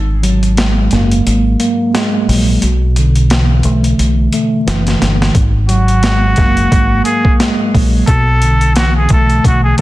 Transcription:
Already playing: G#1 G#2
0.23 F#3, closed hi-hat
0.43 closed hi-hat
0.57 G#3, snare, closed hi-hat
0.91 F#1 A#3, snare, closed hi-hat
1.11 closed hi-hat
1.26 G#1, closed hi-hat
1.59 A#3, closed hi-hat
1.94 G#3, snare, closed hi-hat
2.29 A#1 F#3, open hi-hat
2.62 B1 B2, closed hi-hat
2.96 D3, closed hi-hat
3.15 closed hi-hat
3.30 E3, snare, closed hi-hat
3.63 B1 A3, closed hi-hat
3.84 closed hi-hat
3.99 B1, closed hi-hat
4.33 A3, closed hi-hat
4.66 F#1 E3, snare, closed hi-hat
4.87 snare, closed hi-hat
5.00 G1 D3, snare, closed hi-hat
5.22 snare
5.35 G#1 G#2, kick, closed hi-hat
5.68 F#3 F#4, closed hi-hat
5.88 closed hi-hat
6.03 G#3, snare, closed hi-hat
6.36 F#1 A#3, kick, snare, closed hi-hat
6.57 closed hi-hat
6.72 G#1, kick, closed hi-hat
7.04 A#3 G#4, closed hi-hat
7.25 kick
7.40 G#3, snare, closed hi-hat
7.75 A#1 F#3, kick, open hi-hat
8.07 B1 B2 A4, kick, closed hi-hat
8.42 D3, closed hi-hat
8.61 closed hi-hat
8.75 E3 F#4, snare, closed hi-hat
8.96 G#4
9.09 B1 A3 A4, kick, closed hi-hat
9.30 closed hi-hat
9.44 B1 F#4, kick, closed hi-hat
9.64 G#4
9.78 closed hi-hat

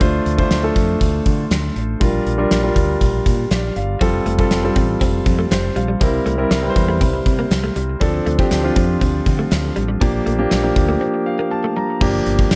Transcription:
0.00 D2 A3 D4 F4 C5, kick, closed hi-hat
0.26 D2, closed hi-hat
0.38 A3 D4 F4 C5, kick
0.51 D2, snare, closed hi-hat
0.63 A3 D4 F4 A4
0.76 F2, kick, closed hi-hat
1.01 D2, kick, closed hi-hat
1.26 D3, kick, closed hi-hat
1.50 D2, snare, closed hi-hat
1.76 A1, closed hi-hat
2.00 A#1 G3 D4 F4 A#4, kick, closed hi-hat
2.26 A#1, closed hi-hat
2.38 G3 D4 F4 A#4
2.51 A#1, snare, closed hi-hat
2.63 G3 D4 F4 A#4
2.76 D2, kick, closed hi-hat
3.01 A#1, kick, closed hi-hat
3.26 A#2, kick, closed hi-hat
3.51 A#1 D5, snare, closed hi-hat
3.76 G1 F5, closed hi-hat
4.01 F1 F3 G3 C4 F4 A4, kick, closed hi-hat
4.13 muted clean electric guitar stroke
4.25 F1 A3, closed hi-hat
4.38 G3 C4 F4 A4, kick
4.50 F1, snare, closed hi-hat
4.64 G3 C4 F4 A4
4.76 A1 C4, kick, closed hi-hat
5.01 F1 C4, kick, closed hi-hat
5.26 F2, muted clean electric guitar stroke, kick, closed hi-hat
5.39 A3
5.50 F1 C5, muted clean electric guitar stroke, snare, closed hi-hat
5.76 A#1 G3 F5, closed hi-hat
5.88 G3
6.00 C2 E3 G3 C4 E4 A#4, kick, closed hi-hat
6.26 C2 A3, closed hi-hat
6.38 G3 C4 E4 A#4, muted clean electric guitar stroke
6.51 C2 G3, snare, closed hi-hat
6.63 G3 C4 E4 B4
6.70 C5
6.76 E2, muted clean electric guitar stroke, kick, closed hi-hat
6.89 A3
7.01 C2 C4, kick, closed hi-hat
7.14 muted clean electric guitar stroke
7.26 C3, kick, closed hi-hat
7.39 A#3
7.50 C2, muted clean electric guitar stroke, snare, closed hi-hat
7.64 A3
7.76 C2 G3, closed hi-hat
8.00 D2 F3 C4 D4 A4, kick, closed hi-hat
8.14 muted clean electric guitar stroke
8.26 D2 A3, closed hi-hat
8.38 F3 C4 D4 G4, kick
8.51 D2, snare, closed hi-hat
8.63 F3 C4 D4 F4
8.76 F2 C4, kick, closed hi-hat
9.01 D2 C4, kick, closed hi-hat
9.26 D3, muted clean electric guitar stroke, kick, closed hi-hat
9.39 A3
9.51 D2, muted clean electric guitar stroke, snare, closed hi-hat
9.76 A1 G3, closed hi-hat
9.88 G3
10.01 A#1 F3 A#3 D4 G4, kick, closed hi-hat
10.26 A#1 A3, closed hi-hat
10.38 F3 A#3 D4 G4, muted clean electric guitar stroke
10.51 A#1 G3, snare, closed hi-hat
10.63 F3 A#3 D4 G4
10.76 D2, muted clean electric guitar stroke, kick, closed hi-hat
10.89 A3
11.01 C4
11.14 muted clean electric guitar stroke
11.26 F5
11.39 A#3
11.51 A5, muted clean electric guitar stroke
11.64 A3
11.76 G3 A#5
12.01 G1 F3 A#3 D4 G4, kick, crash
12.26 G1, closed hi-hat
12.39 kick
12.51 G1, snare, closed hi-hat

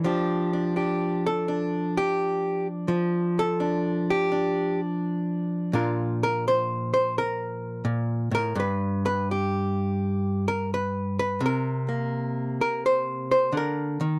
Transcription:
0.04 F3 D4 G4
0.53 D4
0.76 D4 G4
1.26 A4
1.48 D4
1.97 G4
2.88 F3
3.39 A4
3.60 D4
4.10 G4
4.32 D4
5.73 A#2 D4 F4 A#4
6.23 A#4
6.48 C5
6.94 C5
7.18 A#4
7.85 A#2
8.31 A2 A#4
8.55 G2
8.60 B4
9.06 B4
9.31 G4
10.48 A#4
10.74 B4
11.19 B4
11.40 C3
11.46 A#4
11.89 A#3
12.61 A#4
12.86 C5
13.31 C5
13.52 D3
13.57 A#4
14.01 D#3

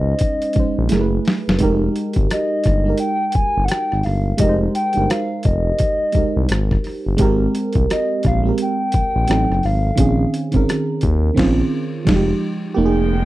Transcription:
Already playing: C#2 G#3 C#4 D#4 C5 D#5
0.19 kick, closed hi-hat
0.42 closed hi-hat
0.53 A#1 G#3 C#4, kick, closed hi-hat
0.58 D#4 C5
0.78 A#1
0.89 F#1 A3 E4 G#4, snare, closed hi-hat
0.94 A#4
1.01 B4
1.25 snare, open hi-hat
1.48 F#1, snare
1.59 F1 G#3 D#4 G4, kick, closed hi-hat
1.64 A#4
1.96 closed hi-hat
2.13 G#1, kick, closed hi-hat
2.31 D#5, cross-stick, closed hi-hat
2.64 G1, kick, cross-stick, closed hi-hat
2.85 G#3 D#4 G4
2.89 A#4
2.98 G5, closed hi-hat
3.31 G5, closed hi-hat
3.35 G1 G#5, kick
3.57 G1
3.65 F#5, closed hi-hat
3.69 G5, cross-stick
3.92 G#1, cross-stick
4.03 G1 F5, cross-stick, open hi-hat
4.37 F1 G#3 D#4 G4 D#5, kick, closed hi-hat
4.42 A#4
4.49 C5
4.75 G5, closed hi-hat
4.93 G1 G#3 D#4, closed hi-hat
4.97 G4 A#4
5.10 F5, cross-stick, closed hi-hat
5.43 F1 D#5, kick, closed hi-hat
5.79 kick, closed hi-hat
6.12 C2 G#3 D#4 G4, kick, closed hi-hat
6.18 A#4
6.36 C2
6.49 G#1, cross-stick, closed hi-hat
6.71 kick, cross-stick
6.84 cross-stick, open hi-hat
7.06 G1
7.17 G#1 G#3 C4 G4, kick, closed hi-hat
7.22 A#4
7.55 closed hi-hat
7.73 C2, kick, closed hi-hat
7.90 D#5, cross-stick, closed hi-hat
8.23 A#1, kick, cross-stick, closed hi-hat
8.27 F5
8.43 G#3 C4 G4
8.49 A#4
8.58 G5, closed hi-hat
8.92 A#1, kick, closed hi-hat
9.16 A#1
9.27 A1 F#3 C4 D#4, cross-stick, closed hi-hat
9.31 A4
9.50 F#1, cross-stick
9.63 G#1 F5, cross-stick, open hi-hat
9.95 A#1 D#3 C4 C#4, kick, closed hi-hat
10.00 G#4
10.34 closed hi-hat
10.52 G#1 D#3 C4 C#4, kick, closed hi-hat
10.56 A#4
10.69 cross-stick, closed hi-hat
11.01 D#2, kick, closed hi-hat
11.34 A#1 D#3 C4 C#4, kick, crash
11.39 F4, snare
12.05 F1 F3 G#3 D#4, kick, snare, crash
12.16 G4
12.75 F1 D#3 G#3 A#3 D#4 G4 G5
12.79 G4
12.86 G#4

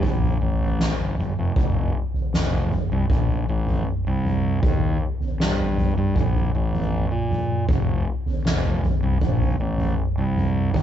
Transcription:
0.03 A#1, kick, floor tom, mid tom
0.22 floor tom
0.41 A1
0.61 floor tom
0.80 snare
0.99 G1
1.17 G1, mid tom
1.38 F1
1.56 F1, kick, floor tom
2.14 floor tom
2.34 F1, snare
2.52 floor tom
2.71 floor tom, mid tom
2.92 C2
3.10 A#1, kick, floor tom
3.29 floor tom
3.49 A1
3.67 floor tom, mid tom
4.07 C2
4.24 mid tom
4.63 D#2, kick, floor tom
5.20 floor tom
5.40 G2, snare
5.59 floor tom
5.77 floor tom, mid tom
5.98 G2
6.16 A#1, kick, floor tom
6.35 floor tom
6.55 A1
6.73 floor tom, mid tom
7.11 A#2
7.30 mid tom
7.68 F1, kick, floor tom
8.26 floor tom
8.45 F1, snare
8.64 floor tom
8.83 floor tom, mid tom
9.03 C2
9.21 A#1, kick, floor tom
9.40 floor tom
9.60 A1
9.78 floor tom, mid tom
10.18 C2
10.36 mid tom
10.74 D#2, kick, floor tom

